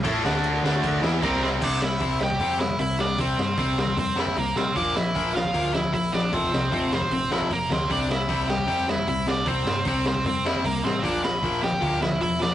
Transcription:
<<
  \new Staff \with { instrumentName = "Lead electric guitar" } { \time 4/4 \key c \mixolydian \tempo 4 = 153 r2. <bes bes'>8 <c' c''>8 | <d' d''>8 <e' e''>4 <g' g''>4 <e' e''>8 <e' e''>8 <d' d''>8 | <c' c''>4 <c' c''>8 <c' c''>8 <c' c''>8 <e' e''>8 <bes bes'>8 <c' c''>8 | <d' d''>8 <e' e''>4 <f' f''>4 <e' e''>8 <e' e''>8 <d' d''>8 |
<c' c''>4 <c' c''>8 <c' c''>8 <c' c''>8 <e' e''>8 <bes bes'>8 <c' c''>8 | <d' d''>8 <e' e''>4 <g' g''>4 <e' e''>8 <e' e''>8 <d' d''>8 | <c' c''>4 <c' c''>8 <c' c''>8 <c' c''>8 <e' e''>8 <bes bes'>8 <c' c''>8 | <d' d''>8 <e' e''>4 <g' g''>4 <e' e''>8 <e' e''>8 <d' d''>8 | }
  \new Staff \with { instrumentName = "Distorted electric guitar" } { \time 4/4 \key c \mixolydian <a e' a'>8 <d a d'>4 <d a d'>4 <e b e'>8 <c g c'>4 | r1 | r1 | r1 |
r1 | r1 | r1 | r1 | }
  \new Staff \with { instrumentName = "Overdriven electric guitar" } { \clef bass \time 4/4 \key c \mixolydian <a e' a'>8 <d a d'>4 <d a d'>4 <e b e'>8 <c g c'>4 | <c g c'>8 <c g>8 <c g c'>8 <c g>8 <c g c'>8 <c g>8 <c g>8 <c g>8 | <c g c'>8 <c g>8 <c g c'>8 <c g>8 <c g>8 <c g c'>8 <c g>8 <c g>8 | <bes, f bes>8 <bes, f>8 <bes, f bes>8 <bes, f>8 <bes, f bes>8 <bes, f>8 <bes, f>8 <bes, f>8 |
<f, c f>8 <f, c>8 <f, c f>8 <f, c>8 <f, c>8 <f, c f>8 <f, c>8 <f, c>8 | <c g c'>8 <c g>8 <c g c'>8 <c g>8 <c g c'>8 <c g>8 <c g>8 <c g>8 | <c g c'>8 <c g>8 <c g c'>8 <c g>8 <c g>8 <c g c'>8 <c g>8 <c g>8 | <bes, f bes>8 <bes, f>8 <bes, f bes>8 <bes, f>8 <bes, f bes>8 <bes, f>8 <bes, f>8 <bes, f>8 | }
  \new Staff \with { instrumentName = "Picked electric bass" } { \clef bass \time 4/4 \key c \mixolydian a,8 d,4 d,4 e,8 c,4 | c,4 c,4 f,4 c,4 | c,8 g,8 c,4 f,4 c,8 bes,,8 | bes,,4 bes,,4 d,4 bes,,4 |
f,,8 c,8 f,,4 bes,,4 f,,8 d,8 | c,4 c,4 f,4 c,4 | c,8 g,8 c,4 f,4 c,8 a,,8 | bes,,4 bes,,4 d,4 e,,4 | }
  \new DrumStaff \with { instrumentName = "Drums" } \drummode { \time 4/4 <cymc bd>8 sn8 cymc8 sn8 <cymc bd>8 sn8 <cymc bd>8 sn8 | <cymc bd>8 sn8 <hho bd>8 sn16 bd16 <hho bd>8 sn16 bd16 <hho bd>8 sn8 | <hho bd>8 sn8 <hho bd>8 sn16 bd16 <hho bd>8 sn16 bd16 <hho bd>8 sn8 | <hho bd>8 sn8 <hho bd>8 sn16 bd16 <hho bd>8 sn16 bd16 <hho bd>8 sn8 |
<hho bd>8 sn8 <hho bd>8 sn16 bd16 <hho bd>8 sn16 bd16 <hho bd>8 sn8 | <hho bd>8 sn8 <hho bd>8 sn16 bd16 <hho bd>8 sn16 bd16 <hho bd>8 sn8 | <hho bd>8 sn8 <hho bd>8 sn16 bd16 <hho bd>8 sn16 bd16 <hho bd>8 sn8 | <hho bd>8 sn8 <hho bd>8 sn16 bd16 <hho bd>8 sn16 bd16 <hho bd>8 sn8 | }
>>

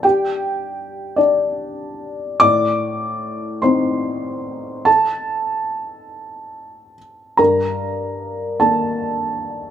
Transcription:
<<
  \new Staff \with { instrumentName = "Felt piano" } { \time 6/8 \key g \minor \tempo 4. = 49 <g' g''>4. <d' d''>4. | <d'' d'''>4. <c'' c'''>4. | <a' a''>2~ <a' a''>8 r8 | <bes' bes''>4. <a' a''>4. | }
  \new Staff \with { instrumentName = "Felt piano" } { \time 6/8 \key g \minor <g d'>2. | a,4. <c' ees'>4.~ | <c' ees'>2. | g,4. <bes d'>4. | }
>>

